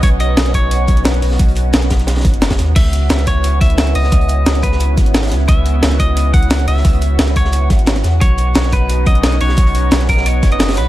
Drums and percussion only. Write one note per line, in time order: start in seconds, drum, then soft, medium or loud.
0.03 kick loud
0.03 closed hi-hat medium
0.03 closed hi-hat loud
0.20 closed hi-hat medium
0.37 snare loud
0.37 closed hi-hat medium
0.45 snare soft
0.45 closed hi-hat soft
0.54 kick medium
0.54 closed hi-hat medium
0.71 closed hi-hat medium
0.88 kick loud
0.88 closed hi-hat medium
0.97 closed hi-hat soft
1.05 snare loud
1.05 closed hi-hat medium
1.14 closed hi-hat soft
1.22 closed hi-hat medium
1.22 open hi-hat medium
1.31 snare medium
1.39 kick loud
1.39 closed hi-hat loud
1.48 closed hi-hat soft
1.55 closed hi-hat medium
1.73 snare loud
1.73 closed hi-hat medium
1.73 closed hi-hat loud
1.82 snare soft
1.82 closed hi-hat soft
1.90 kick medium
1.90 snare loud
1.90 closed hi-hat medium
1.99 snare soft
1.99 closed hi-hat soft
2.07 snare loud
2.07 closed hi-hat loud
2.07 closed hi-hat medium
2.16 snare medium
2.16 closed hi-hat medium
2.20 snare medium
2.20 closed hi-hat medium
2.25 kick loud
2.25 closed hi-hat medium
2.34 closed hi-hat soft
2.42 snare loud
2.42 closed hi-hat loud
2.42 closed hi-hat medium
2.50 kick medium
2.50 snare loud
2.50 snare soft
2.50 closed hi-hat medium
2.50 closed hi-hat soft
2.58 snare medium
2.58 closed hi-hat medium
2.76 kick loud
2.76 closed hi-hat medium
2.76 closed hi-hat loud
2.76 crash medium
2.93 closed hi-hat medium
3.09 snare loud
3.09 closed hi-hat medium
3.09 closed hi-hat loud
3.18 snare soft
3.18 closed hi-hat soft
3.27 kick medium
3.27 closed hi-hat medium
3.44 closed hi-hat loud
3.44 closed hi-hat medium
3.61 kick loud
3.61 closed hi-hat medium
3.70 closed hi-hat soft
3.78 snare loud
3.78 closed hi-hat medium
3.78 closed hi-hat loud
3.87 closed hi-hat soft
3.95 closed hi-hat medium
3.95 open hi-hat medium
4.04 snare medium
4.12 kick loud
4.12 closed hi-hat medium
4.12 closed hi-hat loud
4.21 closed hi-hat soft
4.29 closed hi-hat medium
4.46 snare loud
4.46 closed hi-hat medium
4.46 closed hi-hat loud
4.55 snare soft
4.55 closed hi-hat soft
4.62 kick medium
4.62 closed hi-hat medium
4.72 snare soft
4.80 closed hi-hat loud
4.97 kick loud
4.97 snare soft
4.97 closed hi-hat medium
5.06 closed hi-hat soft
5.14 snare loud
5.14 closed hi-hat medium
5.14 closed hi-hat loud
5.23 snare loud
5.23 snare soft
5.23 closed hi-hat soft
5.23 closed hi-hat medium
5.27 snare loud
5.27 closed hi-hat medium
5.31 snare medium
5.31 closed hi-hat medium
5.48 kick loud
5.48 closed hi-hat loud
5.66 closed hi-hat medium
5.82 snare loud
5.82 closed hi-hat loud
5.82 closed hi-hat medium
5.91 snare soft
5.91 closed hi-hat soft
5.99 kick medium
5.99 closed hi-hat medium
6.17 closed hi-hat medium
6.17 closed hi-hat loud
6.34 kick loud
6.34 closed hi-hat medium
6.43 closed hi-hat soft
6.50 snare loud
6.50 closed hi-hat medium
6.50 closed hi-hat loud
6.59 closed hi-hat soft
6.68 closed hi-hat medium
6.68 open hi-hat medium
6.77 snare soft
6.85 kick loud
6.85 closed hi-hat medium
6.93 closed hi-hat soft
7.01 closed hi-hat medium
7.19 snare loud
7.19 closed hi-hat medium
7.28 snare soft
7.28 closed hi-hat soft
7.36 kick medium
7.36 closed hi-hat medium
7.45 snare soft
7.52 closed hi-hat loud
7.52 closed hi-hat medium
7.70 kick loud
7.70 snare soft
7.70 closed hi-hat medium
7.79 closed hi-hat soft
7.86 snare loud
7.86 closed hi-hat medium
7.96 snare soft
7.96 closed hi-hat soft
8.04 snare medium
8.04 closed hi-hat medium
8.21 kick loud
8.21 closed hi-hat medium
8.38 closed hi-hat medium
8.55 snare loud
8.55 closed hi-hat medium
8.64 snare soft
8.64 closed hi-hat soft
8.72 kick medium
8.72 closed hi-hat medium
8.90 closed hi-hat medium
9.06 kick loud
9.06 closed hi-hat medium
9.15 closed hi-hat soft
9.23 snare loud
9.23 closed hi-hat medium
9.32 closed hi-hat soft
9.41 closed hi-hat medium
9.41 open hi-hat medium
9.49 snare medium
9.57 kick loud
9.57 closed hi-hat medium
9.67 closed hi-hat soft
9.75 closed hi-hat medium
9.91 snare loud
9.91 closed hi-hat loud
9.91 closed hi-hat medium
10.01 snare soft
10.01 closed hi-hat soft
10.09 kick medium
10.09 closed hi-hat medium
10.17 snare medium
10.26 closed hi-hat medium
10.26 closed hi-hat loud
10.43 kick loud
10.43 snare soft
10.43 closed hi-hat medium
10.52 closed hi-hat soft
10.60 snare loud
10.60 closed hi-hat medium
10.69 snare soft
10.69 snare loud
10.69 closed hi-hat medium
10.69 closed hi-hat soft
10.73 snare medium
10.73 closed hi-hat medium
10.76 snare medium
10.76 closed hi-hat medium